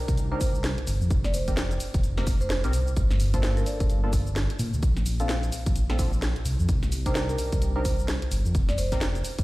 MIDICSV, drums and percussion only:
0, 0, Header, 1, 2, 480
1, 0, Start_track
1, 0, Tempo, 465116
1, 1141, Time_signature, 4, 2, 24, 8
1, 9738, End_track
2, 0, Start_track
2, 0, Title_t, "Drums"
2, 86, Note_on_c, 9, 36, 106
2, 86, Note_on_c, 9, 42, 64
2, 86, Note_on_c, 9, 69, 34
2, 181, Note_off_c, 9, 42, 0
2, 181, Note_off_c, 9, 69, 0
2, 181, Note_on_c, 9, 42, 60
2, 181, Note_on_c, 9, 69, 40
2, 189, Note_off_c, 9, 36, 0
2, 284, Note_off_c, 9, 42, 0
2, 284, Note_off_c, 9, 69, 0
2, 421, Note_on_c, 9, 46, 107
2, 421, Note_on_c, 9, 69, 77
2, 422, Note_on_c, 9, 36, 107
2, 524, Note_off_c, 9, 46, 0
2, 524, Note_off_c, 9, 69, 0
2, 525, Note_off_c, 9, 36, 0
2, 565, Note_on_c, 9, 69, 31
2, 660, Note_off_c, 9, 69, 0
2, 660, Note_on_c, 9, 38, 120
2, 660, Note_on_c, 9, 69, 40
2, 763, Note_off_c, 9, 38, 0
2, 763, Note_off_c, 9, 69, 0
2, 805, Note_on_c, 9, 42, 50
2, 901, Note_on_c, 9, 46, 102
2, 901, Note_on_c, 9, 69, 78
2, 908, Note_off_c, 9, 42, 0
2, 1004, Note_off_c, 9, 46, 0
2, 1004, Note_off_c, 9, 69, 0
2, 1045, Note_on_c, 9, 69, 32
2, 1140, Note_off_c, 9, 69, 0
2, 1140, Note_on_c, 9, 42, 59
2, 1140, Note_on_c, 9, 69, 41
2, 1142, Note_on_c, 9, 36, 125
2, 1244, Note_off_c, 9, 42, 0
2, 1244, Note_off_c, 9, 69, 0
2, 1245, Note_off_c, 9, 36, 0
2, 1285, Note_on_c, 9, 40, 50
2, 1285, Note_on_c, 9, 69, 30
2, 1380, Note_off_c, 9, 69, 0
2, 1380, Note_on_c, 9, 46, 95
2, 1380, Note_on_c, 9, 69, 75
2, 1388, Note_off_c, 9, 40, 0
2, 1484, Note_off_c, 9, 46, 0
2, 1484, Note_off_c, 9, 69, 0
2, 1525, Note_on_c, 9, 42, 62
2, 1525, Note_on_c, 9, 69, 32
2, 1526, Note_on_c, 9, 36, 62
2, 1620, Note_off_c, 9, 69, 0
2, 1620, Note_on_c, 9, 38, 127
2, 1620, Note_on_c, 9, 69, 45
2, 1628, Note_off_c, 9, 42, 0
2, 1629, Note_off_c, 9, 36, 0
2, 1723, Note_off_c, 9, 38, 0
2, 1723, Note_off_c, 9, 69, 0
2, 1765, Note_on_c, 9, 42, 35
2, 1765, Note_on_c, 9, 69, 29
2, 1860, Note_off_c, 9, 69, 0
2, 1860, Note_on_c, 9, 46, 100
2, 1860, Note_on_c, 9, 69, 77
2, 1868, Note_off_c, 9, 42, 0
2, 1963, Note_off_c, 9, 46, 0
2, 1963, Note_off_c, 9, 69, 0
2, 2004, Note_on_c, 9, 42, 65
2, 2004, Note_on_c, 9, 69, 34
2, 2006, Note_on_c, 9, 36, 107
2, 2100, Note_off_c, 9, 42, 0
2, 2100, Note_off_c, 9, 69, 0
2, 2100, Note_on_c, 9, 42, 61
2, 2100, Note_on_c, 9, 69, 44
2, 2109, Note_off_c, 9, 36, 0
2, 2203, Note_off_c, 9, 42, 0
2, 2203, Note_off_c, 9, 69, 0
2, 2245, Note_on_c, 9, 40, 66
2, 2340, Note_on_c, 9, 46, 103
2, 2340, Note_on_c, 9, 69, 74
2, 2342, Note_on_c, 9, 36, 111
2, 2348, Note_off_c, 9, 40, 0
2, 2444, Note_off_c, 9, 46, 0
2, 2444, Note_off_c, 9, 69, 0
2, 2445, Note_off_c, 9, 36, 0
2, 2485, Note_on_c, 9, 69, 35
2, 2580, Note_off_c, 9, 69, 0
2, 2580, Note_on_c, 9, 38, 121
2, 2580, Note_on_c, 9, 69, 40
2, 2684, Note_off_c, 9, 38, 0
2, 2684, Note_off_c, 9, 69, 0
2, 2725, Note_on_c, 9, 42, 52
2, 2725, Note_on_c, 9, 69, 29
2, 2820, Note_off_c, 9, 69, 0
2, 2820, Note_on_c, 9, 46, 100
2, 2820, Note_on_c, 9, 69, 76
2, 2828, Note_off_c, 9, 42, 0
2, 2923, Note_off_c, 9, 46, 0
2, 2923, Note_off_c, 9, 69, 0
2, 2965, Note_on_c, 9, 69, 33
2, 3060, Note_off_c, 9, 69, 0
2, 3060, Note_on_c, 9, 42, 64
2, 3060, Note_on_c, 9, 69, 42
2, 3062, Note_on_c, 9, 36, 118
2, 3163, Note_off_c, 9, 42, 0
2, 3163, Note_off_c, 9, 69, 0
2, 3165, Note_off_c, 9, 36, 0
2, 3205, Note_on_c, 9, 40, 50
2, 3205, Note_on_c, 9, 69, 29
2, 3300, Note_off_c, 9, 69, 0
2, 3300, Note_on_c, 9, 46, 98
2, 3300, Note_on_c, 9, 69, 75
2, 3308, Note_off_c, 9, 40, 0
2, 3404, Note_off_c, 9, 46, 0
2, 3404, Note_off_c, 9, 69, 0
2, 3445, Note_on_c, 9, 42, 67
2, 3445, Note_on_c, 9, 69, 31
2, 3446, Note_on_c, 9, 36, 63
2, 3540, Note_off_c, 9, 69, 0
2, 3540, Note_on_c, 9, 38, 123
2, 3540, Note_on_c, 9, 69, 46
2, 3548, Note_off_c, 9, 42, 0
2, 3549, Note_off_c, 9, 36, 0
2, 3644, Note_off_c, 9, 38, 0
2, 3644, Note_off_c, 9, 69, 0
2, 3685, Note_on_c, 9, 42, 38
2, 3685, Note_on_c, 9, 69, 31
2, 3781, Note_off_c, 9, 69, 0
2, 3781, Note_on_c, 9, 46, 101
2, 3781, Note_on_c, 9, 69, 77
2, 3788, Note_off_c, 9, 42, 0
2, 3884, Note_off_c, 9, 46, 0
2, 3884, Note_off_c, 9, 69, 0
2, 3925, Note_on_c, 9, 42, 69
2, 3925, Note_on_c, 9, 69, 34
2, 3926, Note_on_c, 9, 36, 105
2, 4021, Note_off_c, 9, 42, 0
2, 4021, Note_off_c, 9, 69, 0
2, 4021, Note_on_c, 9, 42, 64
2, 4021, Note_on_c, 9, 69, 43
2, 4029, Note_off_c, 9, 36, 0
2, 4124, Note_off_c, 9, 42, 0
2, 4124, Note_off_c, 9, 69, 0
2, 4260, Note_on_c, 9, 46, 107
2, 4260, Note_on_c, 9, 69, 81
2, 4262, Note_on_c, 9, 36, 109
2, 4364, Note_off_c, 9, 46, 0
2, 4364, Note_off_c, 9, 69, 0
2, 4365, Note_off_c, 9, 36, 0
2, 4405, Note_on_c, 9, 69, 35
2, 4500, Note_off_c, 9, 69, 0
2, 4500, Note_on_c, 9, 38, 109
2, 4500, Note_on_c, 9, 69, 45
2, 4603, Note_off_c, 9, 38, 0
2, 4603, Note_off_c, 9, 69, 0
2, 4645, Note_on_c, 9, 42, 53
2, 4740, Note_on_c, 9, 46, 103
2, 4740, Note_on_c, 9, 69, 79
2, 4748, Note_off_c, 9, 42, 0
2, 4843, Note_off_c, 9, 46, 0
2, 4843, Note_off_c, 9, 69, 0
2, 4885, Note_on_c, 9, 69, 33
2, 4981, Note_off_c, 9, 69, 0
2, 4981, Note_on_c, 9, 42, 66
2, 4981, Note_on_c, 9, 69, 44
2, 4982, Note_on_c, 9, 36, 117
2, 5084, Note_off_c, 9, 42, 0
2, 5084, Note_off_c, 9, 69, 0
2, 5085, Note_off_c, 9, 36, 0
2, 5125, Note_on_c, 9, 40, 50
2, 5125, Note_on_c, 9, 69, 30
2, 5220, Note_off_c, 9, 69, 0
2, 5220, Note_on_c, 9, 46, 103
2, 5220, Note_on_c, 9, 69, 78
2, 5228, Note_off_c, 9, 40, 0
2, 5323, Note_off_c, 9, 46, 0
2, 5323, Note_off_c, 9, 69, 0
2, 5365, Note_on_c, 9, 42, 65
2, 5365, Note_on_c, 9, 69, 32
2, 5461, Note_off_c, 9, 69, 0
2, 5461, Note_on_c, 9, 38, 120
2, 5461, Note_on_c, 9, 69, 46
2, 5468, Note_off_c, 9, 42, 0
2, 5564, Note_off_c, 9, 38, 0
2, 5564, Note_off_c, 9, 69, 0
2, 5605, Note_on_c, 9, 42, 39
2, 5605, Note_on_c, 9, 69, 30
2, 5700, Note_off_c, 9, 69, 0
2, 5700, Note_on_c, 9, 46, 103
2, 5700, Note_on_c, 9, 69, 78
2, 5708, Note_off_c, 9, 42, 0
2, 5803, Note_off_c, 9, 46, 0
2, 5803, Note_off_c, 9, 69, 0
2, 5845, Note_on_c, 9, 42, 75
2, 5845, Note_on_c, 9, 69, 35
2, 5846, Note_on_c, 9, 36, 104
2, 5940, Note_off_c, 9, 42, 0
2, 5940, Note_off_c, 9, 69, 0
2, 5940, Note_on_c, 9, 42, 66
2, 5940, Note_on_c, 9, 69, 44
2, 5949, Note_off_c, 9, 36, 0
2, 6044, Note_off_c, 9, 42, 0
2, 6044, Note_off_c, 9, 69, 0
2, 6085, Note_on_c, 9, 40, 66
2, 6181, Note_on_c, 9, 46, 108
2, 6181, Note_on_c, 9, 69, 79
2, 6182, Note_on_c, 9, 36, 98
2, 6188, Note_off_c, 9, 40, 0
2, 6284, Note_off_c, 9, 46, 0
2, 6284, Note_off_c, 9, 69, 0
2, 6285, Note_off_c, 9, 36, 0
2, 6326, Note_on_c, 9, 69, 34
2, 6421, Note_off_c, 9, 69, 0
2, 6421, Note_on_c, 9, 38, 111
2, 6421, Note_on_c, 9, 69, 41
2, 6525, Note_off_c, 9, 38, 0
2, 6525, Note_off_c, 9, 69, 0
2, 6566, Note_on_c, 9, 42, 57
2, 6662, Note_on_c, 9, 46, 105
2, 6662, Note_on_c, 9, 69, 78
2, 6669, Note_off_c, 9, 42, 0
2, 6765, Note_off_c, 9, 46, 0
2, 6765, Note_off_c, 9, 69, 0
2, 6806, Note_on_c, 9, 69, 34
2, 6901, Note_off_c, 9, 69, 0
2, 6901, Note_on_c, 9, 42, 72
2, 6901, Note_on_c, 9, 69, 42
2, 6902, Note_on_c, 9, 36, 112
2, 7004, Note_off_c, 9, 42, 0
2, 7004, Note_off_c, 9, 69, 0
2, 7005, Note_off_c, 9, 36, 0
2, 7046, Note_on_c, 9, 40, 50
2, 7046, Note_on_c, 9, 69, 29
2, 7141, Note_off_c, 9, 69, 0
2, 7141, Note_on_c, 9, 46, 107
2, 7141, Note_on_c, 9, 69, 72
2, 7149, Note_off_c, 9, 40, 0
2, 7244, Note_off_c, 9, 46, 0
2, 7244, Note_off_c, 9, 69, 0
2, 7286, Note_on_c, 9, 36, 60
2, 7286, Note_on_c, 9, 42, 68
2, 7286, Note_on_c, 9, 69, 32
2, 7381, Note_off_c, 9, 69, 0
2, 7381, Note_on_c, 9, 38, 114
2, 7381, Note_on_c, 9, 69, 44
2, 7389, Note_off_c, 9, 42, 0
2, 7390, Note_off_c, 9, 36, 0
2, 7484, Note_off_c, 9, 38, 0
2, 7484, Note_off_c, 9, 69, 0
2, 7526, Note_on_c, 9, 42, 39
2, 7526, Note_on_c, 9, 69, 31
2, 7621, Note_off_c, 9, 69, 0
2, 7621, Note_on_c, 9, 46, 105
2, 7621, Note_on_c, 9, 69, 72
2, 7629, Note_off_c, 9, 42, 0
2, 7724, Note_off_c, 9, 46, 0
2, 7724, Note_off_c, 9, 69, 0
2, 7766, Note_on_c, 9, 42, 72
2, 7766, Note_on_c, 9, 69, 33
2, 7767, Note_on_c, 9, 36, 94
2, 7861, Note_off_c, 9, 42, 0
2, 7861, Note_off_c, 9, 69, 0
2, 7861, Note_on_c, 9, 42, 69
2, 7861, Note_on_c, 9, 69, 43
2, 7870, Note_off_c, 9, 36, 0
2, 7965, Note_off_c, 9, 42, 0
2, 7965, Note_off_c, 9, 69, 0
2, 8101, Note_on_c, 9, 46, 115
2, 8101, Note_on_c, 9, 69, 79
2, 8102, Note_on_c, 9, 36, 97
2, 8205, Note_off_c, 9, 36, 0
2, 8205, Note_off_c, 9, 46, 0
2, 8205, Note_off_c, 9, 69, 0
2, 8246, Note_on_c, 9, 69, 33
2, 8342, Note_off_c, 9, 69, 0
2, 8342, Note_on_c, 9, 38, 111
2, 8342, Note_on_c, 9, 69, 42
2, 8445, Note_off_c, 9, 38, 0
2, 8445, Note_off_c, 9, 69, 0
2, 8486, Note_on_c, 9, 42, 56
2, 8581, Note_on_c, 9, 46, 114
2, 8581, Note_on_c, 9, 69, 79
2, 8589, Note_off_c, 9, 42, 0
2, 8684, Note_off_c, 9, 46, 0
2, 8684, Note_off_c, 9, 69, 0
2, 8726, Note_on_c, 9, 69, 31
2, 8821, Note_off_c, 9, 69, 0
2, 8821, Note_on_c, 9, 42, 69
2, 8821, Note_on_c, 9, 69, 42
2, 8822, Note_on_c, 9, 36, 116
2, 8924, Note_off_c, 9, 42, 0
2, 8924, Note_off_c, 9, 69, 0
2, 8925, Note_off_c, 9, 36, 0
2, 8965, Note_on_c, 9, 40, 51
2, 8965, Note_on_c, 9, 69, 28
2, 9061, Note_off_c, 9, 69, 0
2, 9061, Note_on_c, 9, 46, 108
2, 9061, Note_on_c, 9, 69, 69
2, 9068, Note_off_c, 9, 40, 0
2, 9164, Note_off_c, 9, 46, 0
2, 9164, Note_off_c, 9, 69, 0
2, 9205, Note_on_c, 9, 40, 32
2, 9205, Note_on_c, 9, 42, 66
2, 9205, Note_on_c, 9, 69, 31
2, 9207, Note_on_c, 9, 36, 61
2, 9301, Note_off_c, 9, 69, 0
2, 9301, Note_on_c, 9, 38, 123
2, 9301, Note_on_c, 9, 69, 45
2, 9309, Note_off_c, 9, 40, 0
2, 9309, Note_off_c, 9, 42, 0
2, 9310, Note_off_c, 9, 36, 0
2, 9404, Note_off_c, 9, 38, 0
2, 9404, Note_off_c, 9, 69, 0
2, 9445, Note_on_c, 9, 42, 38
2, 9445, Note_on_c, 9, 69, 30
2, 9541, Note_off_c, 9, 69, 0
2, 9541, Note_on_c, 9, 46, 112
2, 9541, Note_on_c, 9, 69, 75
2, 9548, Note_off_c, 9, 42, 0
2, 9644, Note_off_c, 9, 46, 0
2, 9644, Note_off_c, 9, 69, 0
2, 9686, Note_on_c, 9, 42, 72
2, 9686, Note_on_c, 9, 69, 33
2, 9687, Note_on_c, 9, 36, 97
2, 9738, Note_off_c, 9, 36, 0
2, 9738, Note_off_c, 9, 42, 0
2, 9738, Note_off_c, 9, 69, 0
2, 9738, End_track
0, 0, End_of_file